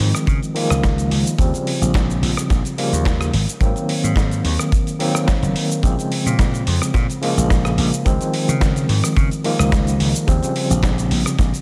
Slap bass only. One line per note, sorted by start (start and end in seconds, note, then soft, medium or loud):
0.00 0.11 G#2 medium
0.27 0.39 C#3 medium
0.70 1.07 C#2 medium
1.11 1.23 C#2 loud
1.38 1.50 D#2 medium
1.81 2.18 A#1 medium
2.22 2.34 A#1 medium
2.50 2.62 A#1 medium
2.92 3.29 D#2 medium
3.33 3.45 G#1 medium
3.61 3.72 G#1 medium
4.04 4.40 G#2 medium
4.45 4.56 D#2 medium
5.42 5.53 F#1 loud
5.83 5.95 A#1 medium
6.26 6.62 A#2 medium
6.67 6.78 F2 medium
6.94 7.06 A#2 medium
7.37 7.73 A#1 medium
7.78 7.89 A#1 loud
8.06 8.17 C#2 medium
8.48 8.85 C#3 medium
8.89 9.00 G#2 medium
9.17 9.28 C#3 medium
9.59 9.96 C#2 medium
10.00 10.12 C#2 loud
10.28 10.39 D#2 medium
10.70 11.07 A#1 medium
11.11 11.23 A#1 medium
11.38 11.50 A#1 medium